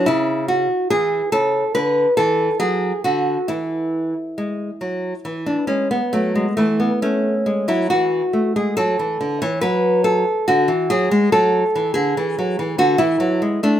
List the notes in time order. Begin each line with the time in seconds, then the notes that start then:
0.06 C#3 E4
0.48 F#4
0.90 E3 G#4
1.32 C#3 A4
1.75 D3 B4
2.17 E3 A4
2.60 F#3 G#4
3.04 D3 F#4
3.48 E3 E4
4.38 G#3
4.81 F#3
5.25 E3
5.46 D4
5.67 G#3 C#4
5.91 B3
6.13 F#3 A3
6.35 G#3
6.57 E3 A3
6.80 B3
7.02 A3 C#4
7.46 G#3
7.68 F#3 E4
7.90 E3 F#4
8.33 A3
8.56 G#3 G#4
8.77 F#3 A4
8.99 E3
9.21 D3
9.42 E3 C#5
9.61 F#3 B4
10.04 A4
10.48 D3 F#4
10.68 E3
10.90 F#3 G#4
11.11 G#3
11.32 F#3 A4
11.75 E3
11.94 D3 G#4
12.17 E3
12.39 F#3
12.59 E3
12.78 D3 F#4
12.98 E3 E4
13.20 F#3
13.42 G#3
13.63 A3 D4